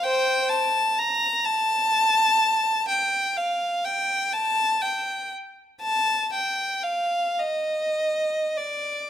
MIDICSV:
0, 0, Header, 1, 2, 480
1, 0, Start_track
1, 0, Tempo, 946372
1, 25, Time_signature, 6, 3, 24, 8
1, 1945, Tempo, 988468
1, 2905, Tempo, 1029160
1, 3385, Tempo, 1119403
1, 3865, Tempo, 1200000
1, 4320, End_track
2, 0, Start_track
2, 0, Title_t, "Violin"
2, 0, Program_c, 0, 40
2, 16, Note_on_c, 0, 72, 63
2, 17, Note_on_c, 0, 79, 77
2, 237, Note_off_c, 0, 72, 0
2, 248, Note_on_c, 0, 81, 73
2, 254, Note_off_c, 0, 79, 0
2, 491, Note_off_c, 0, 81, 0
2, 499, Note_on_c, 0, 82, 74
2, 735, Note_on_c, 0, 81, 87
2, 741, Note_off_c, 0, 82, 0
2, 1461, Note_off_c, 0, 81, 0
2, 1461, Note_on_c, 0, 79, 70
2, 1696, Note_off_c, 0, 79, 0
2, 1706, Note_on_c, 0, 77, 60
2, 1948, Note_off_c, 0, 77, 0
2, 1948, Note_on_c, 0, 79, 67
2, 2183, Note_on_c, 0, 81, 73
2, 2185, Note_off_c, 0, 79, 0
2, 2420, Note_on_c, 0, 79, 60
2, 2422, Note_off_c, 0, 81, 0
2, 2660, Note_off_c, 0, 79, 0
2, 2904, Note_on_c, 0, 81, 70
2, 3126, Note_off_c, 0, 81, 0
2, 3145, Note_on_c, 0, 79, 60
2, 3380, Note_on_c, 0, 77, 60
2, 3382, Note_off_c, 0, 79, 0
2, 3618, Note_off_c, 0, 77, 0
2, 3621, Note_on_c, 0, 75, 63
2, 4103, Note_off_c, 0, 75, 0
2, 4109, Note_on_c, 0, 74, 54
2, 4320, Note_off_c, 0, 74, 0
2, 4320, End_track
0, 0, End_of_file